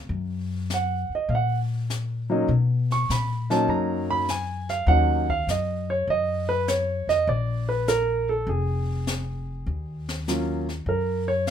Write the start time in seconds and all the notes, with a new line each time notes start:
0.09 F#2, brush sweep
0.70 snare, hi-hat pedal
0.74 F#5
1.09 muted upright bass stroke
1.15 D#5
1.29 A#2 F5, brush sweep
1.35 F#5
1.90 snare, hi-hat pedal
2.30 F#3 A#3 C#4 D#4
2.48 B2, brush sweep
2.91 C#6, snare
3.09 A#2 B5, snare, hi-hat pedal
3.50 F#3 A#3 C#4 D#4 A5, snare
3.68 F#2 A#5, brush sweep
4.11 B5
4.28 G#5, snare, hi-hat pedal
4.69 F5, snare
4.86 D#2 F#3 A#3 C#4 D#4 F#5, brush sweep
5.29 F5, kick
5.47 F#2 D#5, snare, hi-hat pedal
5.90 C#5
6.07 F#2 D#5, brush sweep
6.49 B4
6.68 C#5, snare, hi-hat pedal
7.07 F2 D#5, snare
7.27 A#1 D5, brush sweep
7.69 B4
7.88 A#4, snare, hi-hat pedal
8.29 A4
8.47 F1 G#4, brush sweep
9.07 snare, hi-hat pedal
9.66 D#2, brush sweep
10.09 snare
10.28 F#3 A#3 C#4 F4, snare, hi-hat pedal
10.69 snare
10.86 F#2 A#4, brush sweep
11.28 C#5
11.47 snare, hi-hat pedal